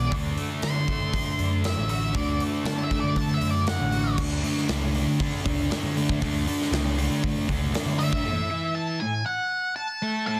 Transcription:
Already playing: distorted electric guitar B2 E3, clean electric guitar E3 G#3 B3 G#4, lead electric guitar D5
0.11 picked electric bass D2, distorted electric guitar D3 A3 D4, clean electric guitar D3, kick, open hi-hat
0.38 clean electric guitar A3, open hi-hat
0.62 clean electric guitar D3, picked electric bass D3, lead electric guitar C6, snare, open hi-hat
0.88 clean electric guitar A3, kick, open hi-hat
1.00 picked electric bass D3
1.13 kick, open hi-hat
1.39 picked electric bass F#2, clean electric guitar D3, open hi-hat
1.64 lead electric guitar E5, snare, open hi-hat
1.77 picked electric bass A1
1.89 clean electric guitar F#4, lead electric guitar E5, open hi-hat
2.14 picked electric bass D2, distorted electric guitar D3 A3 D4, clean electric guitar D3, lead electric guitar D5, kick, open hi-hat
2.40 clean electric guitar A3, open hi-hat
2.65 picked electric bass D3, clean electric guitar D3, lead electric guitar A5, snare, open hi-hat
2.83 lead electric guitar E5
2.91 clean electric guitar A3, kick, open hi-hat
3.00 picked electric bass D3, lead electric guitar D5
3.16 lead electric guitar A5, kick, open hi-hat
3.34 lead electric guitar E5
3.41 picked electric bass F#2, clean electric guitar D3, open hi-hat
3.50 lead electric guitar D5
3.67 lead electric guitar F#5, snare, open hi-hat
3.80 picked electric bass A1
3.92 clean electric guitar F#4, open hi-hat
4.17 picked electric bass D2, distorted electric guitar D3 A3 D4, kick, crash
4.43 distorted electric guitar D3 A3 D4, open hi-hat
4.57 snare
4.68 picked electric bass C#2, distorted electric guitar D3 A3 D4, snare, open hi-hat
4.94 distorted electric guitar D3 A3 D4, open hi-hat
5.06 picked electric bass D3
5.20 distorted electric guitar D3 A3 D4, kick, open hi-hat
5.45 picked electric bass C#2, distorted electric guitar D3 A3 D4, kick, open hi-hat
5.70 distorted electric guitar D3 A3 D4, snare, open hi-hat
5.84 picked electric bass D3
5.97 distorted electric guitar D3 A3 D4, open hi-hat
6.09 kick
6.22 picked electric bass D2, distorted electric guitar D3 A3 D4, kick, open hi-hat
6.47 distorted electric guitar D3 A3 D4, open hi-hat
6.62 snare
6.72 picked electric bass C#2, distorted electric guitar D3 A3 D4, snare, open hi-hat
6.98 distorted electric guitar D3 A3 D4, open hi-hat
7.10 picked electric bass D3
7.24 distorted electric guitar D3 A3 D4, kick
7.48 picked electric bass C#2, distorted electric guitar D3 A3 D4, kick, open hi-hat
7.74 distorted electric guitar D3 A3 D4, snare, open hi-hat
7.86 picked electric bass D3
7.99 distorted electric guitar D3 A3 D4, lead electric guitar E5, open hi-hat
8.13 kick
8.25 distorted electric guitar A2 A3
8.50 distorted electric guitar E3 E4
8.75 lead electric guitar A5
9.00 distorted electric guitar A2, lead electric guitar G#5
9.26 lead electric guitar F#5
9.76 lead electric guitar A5
10.02 distorted electric guitar A3 A4
10.27 distorted electric guitar A2 A3, lead electric guitar A5

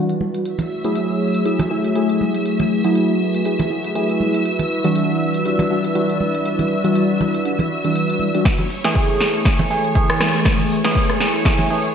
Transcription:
Already playing: analog polysynth E3 G3 D4 F#4, analog synth pad G3 E4 F#4 B4 D5
0.09 closed hi-hat
0.21 high conga
0.34 closed hi-hat
0.45 analog synth pad A3 E4 G#4 C#5, string machine E5 E6, closed hi-hat
0.59 closed hi-hat, low conga
0.84 analog polysynth F#3 A3 E4 G#4, closed hi-hat
0.95 closed hi-hat
1.34 closed hi-hat
1.45 analog polysynth F#3 A3 E4 G#4, closed hi-hat
1.59 closed hi-hat, low conga
1.70 analog polysynth F#3 A3 E4 G#4
1.84 closed hi-hat
1.95 analog polysynth F#3 A3 E4 G#4, closed hi-hat
2.09 closed hi-hat
2.21 high conga
2.34 closed hi-hat
2.46 analog synth pad B4, closed hi-hat
2.60 closed hi-hat, low conga
2.84 analog polysynth F#3 A3 E4 G#4, closed hi-hat
2.95 closed hi-hat
3.34 closed hi-hat
3.45 analog polysynth F#3 A3 E4 G#4, closed hi-hat
3.59 closed hi-hat, low conga
3.70 analog polysynth F#3 A3 E4 G#4
3.84 closed hi-hat
3.95 analog polysynth F#3 A3 E4 G#4, closed hi-hat
4.10 closed hi-hat
4.20 high conga
4.34 closed hi-hat
4.45 analog synth pad G3 D5, closed hi-hat
4.59 closed hi-hat, low conga
4.84 analog polysynth E3 G3 D4 F#4, closed hi-hat
4.95 closed hi-hat
5.34 closed hi-hat
5.45 analog polysynth E3 G3 D4 F#4, closed hi-hat
5.59 closed hi-hat, low conga
5.70 analog polysynth E3 G3 D4 F#4
5.84 closed hi-hat
5.95 analog polysynth E3 G3 D4 F#4, closed hi-hat
6.10 closed hi-hat
6.20 high conga
6.35 closed hi-hat
6.45 closed hi-hat
6.59 closed hi-hat, low conga
6.84 analog polysynth E3 G3 D4 F#4, closed hi-hat
6.95 closed hi-hat
7.21 low conga
7.35 closed hi-hat
7.45 analog polysynth E3 G3 D4 F#4, closed hi-hat
7.59 closed hi-hat, low conga
7.84 analog polysynth E3 G3 D4 F#4, closed hi-hat
7.96 closed hi-hat
8.10 closed hi-hat
8.20 high conga
8.34 analog polysynth E3 G3 D4 F#4, closed hi-hat
8.45 analog synth pad A3 E4 F#4 G#4 C#5, string machine C#5 C#6, kick, snare, closed hi-hat
8.59 closed hi-hat, low conga
8.70 open hi-hat
8.84 analog polysynth E3 A3 G#4, snare, closed hi-hat
8.95 kick, closed hi-hat
9.21 snare, open hi-hat
9.35 closed hi-hat
9.45 analog polysynth E3 A3 G#4, kick, snare, closed hi-hat
9.59 open hi-hat, low conga
9.70 analog polysynth E3 A3 G#4, open hi-hat
9.85 closed hi-hat
9.95 analog polysynth E3 A3 G#4, kick, closed hi-hat
10.10 cross-stick, closed hi-hat
10.20 cross-stick, snare, open hi-hat, high conga
10.35 closed hi-hat
10.45 kick, snare, closed hi-hat
10.59 open hi-hat, low conga
10.70 open hi-hat
10.84 analog polysynth E3 A3 G#4, snare, closed hi-hat
10.95 kick, closed hi-hat
11.10 cross-stick
11.20 snare, open hi-hat
11.35 closed hi-hat
11.45 analog polysynth E3 A3 G#4, kick, snare, closed hi-hat
11.59 closed hi-hat, low conga
11.70 analog polysynth E3 A3 G#4, open hi-hat
11.85 closed hi-hat

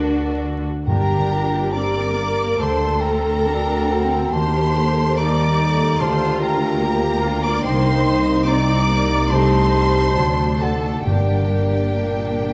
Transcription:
Already playing: double bass section D2, cello section D3, harp D3 A3 D4 F#4, violin section D4 D5, viola section D4 F#4, french horn section A#4, flute A#4
0.28 harp A4
0.58 harp D4
0.86 double bass section G1, timpani G2, cello section G2, harp G2, viola section D4 G4, french horn section G4, violin section A#4 A#5, flute G5
1.17 harp D3
1.32 french horn section F4
1.45 harp A#3
1.72 viola section C4 A#4, harp D4, violin section D5 D6, flute A#5
1.77 french horn section G4
2.04 harp G4
2.17 viola section A#3, french horn section A#4
2.33 harp A#3
2.60 cello section D2, double bass section D2, harp D3, viola section A3 A4, french horn section A4, violin section C5 C6, flute A5
2.89 harp A3
3.00 violin section A#4 A#5, flute G5
3.19 harp C4
3.46 harp D4, viola section D4, french horn section F#4
3.76 harp F#4
3.91 viola section C4, french horn section F#4
4.05 harp C4
4.32 cello section D#2, double bass section D#2, harp D#3, viola section A#3 G4, french horn section G4, violin section C5 C6, flute A5
4.63 harp A#3
4.77 french horn section A4
4.92 harp G4
5.17 viola section G3 D#4, harp A#3, french horn section A#4, violin section D5 D6, flute A#5
5.47 harp A#4
5.61 french horn section A4
5.74 harp A#3
5.99 cello section D2, double bass section D2, timpani D3, harp D3, viola section A3 F4, french horn section G4, violin section C5 C6, flute A5
6.30 harp A#3
6.42 violin section A#4 A#5, flute G5
6.56 harp D4
6.83 viola section A#3 G4, french horn section F4, harp F4
7.12 harp A#4
7.24 french horn section D4, viola section F4
7.39 harp D4
7.44 violin section D5 D6, flute A#5
7.63 cello section C2, harp C3, french horn section D#4, viola section D#4, violin section C5 C6, flute G5
7.67 double bass section C2
7.94 harp G3
8.21 harp A#3
8.47 viola section C4, harp D#4, violin section D5 D6, flute A#5
8.76 harp G4
8.92 viola section A#3
9.04 harp A#3
9.31 harp C3, viola section A3 D#4, french horn section G4, violin section C5 C6, flute A5
9.76 viola section G3
9.88 harp D#4 A4
10.16 cello section D2, double bass section D2, harp D3, viola section F#3 D4, french horn section F#4
10.44 harp A3
10.60 viola section A3, french horn section A4, violin section A4 A5, flute F#5
10.75 harp D#4 F#4
11.06 double bass section G1, harp G2, timpani G2, cello section G2, viola section A#3 D4, violin section G4 G5, french horn section A#4, flute D5
11.38 harp D3
11.70 harp A#3
12.00 cello section A#2, harp D4
12.33 harp G4

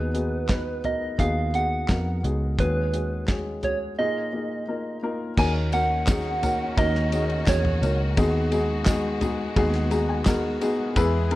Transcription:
Already playing: picked electric bass D#2, upright piano D#3 B3 D#4 F#4 G#4, soft synth lead B4
0.14 upright piano B3 D#4 F#4 G#4, closed hi-hat
0.49 upright piano B3 D#4 F#4 B4, kick, snare, clap, closed hi-hat
0.84 upright piano B3 D#4 F#4 A#4, soft synth lead D#5, closed hi-hat, floor tom
1.18 picked electric bass D#2, upright piano B3 D#4 F#4 G#4, soft synth lead F5, kick, closed hi-hat
1.54 upright piano B3 D#4 F#4 G#4, soft synth lead F#5, closed hi-hat
1.88 picked electric bass F2, upright piano B3 D#4 F#4 A#4, kick, snare, clap, closed hi-hat
2.23 picked electric bass C#2, upright piano B3 D#4 F#4 G#4, closed hi-hat
2.59 picked electric bass D#2, upright piano D#3 G#3 C#4 F#4 G#4, soft synth lead B4, kick, closed hi-hat
2.92 upright piano G#3 C#4 F#4 G#4, closed hi-hat
3.28 upright piano G#3 C#4 F#4 G#4, kick, snare, clap, closed hi-hat
3.63 upright piano G#3 C#4 F#4 G#4, soft synth lead C#5, closed hi-hat, floor tom
3.98 upright piano A#2 A#3 D#4 F4 G#4, soft synth lead D#5
4.33 upright piano A#3 D#4 F4 G#4
4.68 upright piano A#3 D#4 F4 A#4
5.03 upright piano A#3 D#4 F4 A#4
5.38 picked electric bass D#2, string section D#3 C#4 F#4, upright piano D#3 A#3 C#4 D#4 F#4 A#4, soft synth lead G#5, kick, crash, tambourine
5.73 upright piano A#3 C#4 D#4 F#4 A#4, soft synth lead F#5, ride, tambourine
6.07 upright piano A#3 C#4 D#4 F#4 G#4, kick, snare, clap, ride, tambourine
6.42 upright piano A#3 C#4 D#4 F#4 A#4, floor tom, ride, tambourine
6.77 picked electric bass D#2, upright piano A#3 C#4 D#4 F#4 A#4, soft synth lead D#5, kick, ride, tambourine
6.95 snare
7.12 upright piano A#3 C#4 D#4 F#4 G#4, ride, tambourine
7.30 ride
7.46 picked electric bass E2, upright piano A#3 C#4 D#4 F#4 G#4, soft synth lead C#5, kick, snare, clap, ride, tambourine
7.65 floor tom
7.82 picked electric bass C#2, upright piano A#3 C#4 D#4 F#4 A#4, ride, tambourine
8.17 picked electric bass D#2, upright piano D#3 G#3 B3 D#4 F#4 G#4, string section G#3 B3, kick, ride, tambourine
8.51 upright piano G#3 B3 D#4 F#4 G#4, ride, tambourine
8.86 upright piano G#3 B3 D#4 F#4 G#4, kick, snare, clap, ride, tambourine
9.21 upright piano G#3 B3 D#4 F#4 G#4, floor tom, ride, tambourine
9.56 picked electric bass D#2, upright piano G#3 B3 D#4 F#4 G#4, kick, ride
9.74 snare, ride
9.91 upright piano G#3 B3 D#4 F#4 G#4 A#5, ride, tambourine
10.09 upright piano G#5
10.25 upright piano G#3 B3 D#4 F#4 A#4 F#5, kick, snare, clap, ride, tambourine
10.61 upright piano G#3 B3 D#4 F#4 G#4 D#5, ride, tambourine
10.96 picked electric bass E2, string section E3 G#4, upright piano E3 G#3 B3 E4 G#4 B4, kick, ride, tambourine
11.31 upright piano G#3 B3 E4 G#4 A#4, ride

